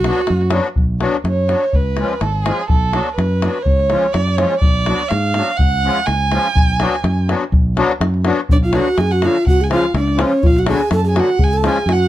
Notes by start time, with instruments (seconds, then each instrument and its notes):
Already playing: ocarina F#4, violin F#4
0.04 accordion F#3 B3 D4 F#4, davul high
0.27 fingered electric bass F#2, davul high
0.41 davul high
0.50 accordion F#3 B3 D4 F#4, davul high
0.76 fingered electric bass B1, davul low
1.00 accordion F#3 B3 D4 F#4, davul high
1.24 fingered electric bass F#2, davul high
1.29 violin C#5
1.48 accordion F#3 B3 D4 F#4, davul high
1.73 fingered electric bass C#2, violin B4, davul low
1.97 accordion F3 G#3 C#4 F4, davul high
2.21 fingered electric bass G#1, violin A4, davul high
2.44 accordion F3 G#3 C#4, violin G#4, davul high
2.48 accordion F4
2.68 fingered electric bass B1, violin A4, davul low
2.93 accordion F#3 B3 D4 F#4, davul high
3.15 fingered electric bass F#2, violin B4, davul high
3.42 accordion F#3 B3 D4 F#4, davul high
3.62 violin C#5, davul low
3.66 fingered electric bass C#2
3.79 davul high
3.90 accordion F3 G#3 C#4 F4, davul high
4.04 davul high
4.12 fingered electric bass F#2, violin D5, davul high
4.27 davul high
4.37 accordion F3 G#3 C#4 F4, violin C#5, davul high
4.51 davul high
4.59 fingered electric bass B1, violin D5, davul low
4.86 accordion F#3 B3 D4 F#4, davul high
5.08 fingered electric bass G#2, violin F5, davul high
5.34 accordion F#3 B3 D4 F#4, davul high
5.57 fingered electric bass C#2, violin F#5, davul low
5.84 accordion F3 G#3 C#4 F4
6.06 fingered electric bass C#2, violin G#5, davul high
6.32 accordion F3 G#3 C#4 F4, davul high
6.55 fingered electric bass B1, davul low
6.79 accordion F#3 B3 D4 F#4, davul high
7.04 fingered electric bass F#2, davul high
7.28 accordion F#3 B3 D4 F#4, davul high
7.52 fingered electric bass B1, davul low
7.77 accordion F#3 B3 D4 F#4, davul high
8.00 fingered electric bass F#2, davul high
8.14 davul high
8.24 accordion F#3 B3 D4 F#4, davul high
8.49 fingered electric bass B1, ocarina D4, violin D5, davul low
8.63 ocarina F4, violin F5, davul high
8.72 accordion D3 F#3 B3 D4 F#4, violin F#5, davul high
8.76 ocarina F#4
8.97 fingered electric bass F#2, ocarina G#4, violin G#5, davul high
9.11 ocarina F#4, violin F#5, davul high
9.22 accordion D3 F#3 B3 D4 F#4, ocarina F4, violin F5, davul high
9.47 fingered electric bass C#2, ocarina F#4, violin F#5, davul low
9.60 ocarina G#4, violin G#5, davul high
9.69 accordion C#3 F3 G#3 C#4 F4, ocarina F4, violin F5, davul high
9.94 fingered electric bass C#2, ocarina D4, davul high
9.99 violin D5
10.08 davul high
10.16 accordion C#3 F3 G#3 C#4 F4, davul high
10.21 ocarina C#4, violin C#5
10.43 fingered electric bass B1, ocarina F4, violin F5, davul low
10.57 ocarina F#4, violin F#5, davul high
10.66 accordion D3 F#3 B3 D4 F#4, ocarina G#4, davul high
10.71 violin G#5
10.91 fingered electric bass F#2, ocarina A4, davul high
10.95 violin A5
11.04 ocarina G#4, davul high
11.09 violin G#5
11.14 accordion D3 F#3 B3 D4 F#4, ocarina F#4, davul high
11.19 violin F#5
11.39 fingered electric bass C#2, ocarina G#4, davul low
11.44 violin G#5
11.53 ocarina A4, violin A5
11.62 accordion C#3 F3 G#3 C#4 F4, davul high
11.66 ocarina G#4, violin G#5
11.78 davul high
11.86 fingered electric bass F#2, ocarina F#4, davul high
11.92 violin F#5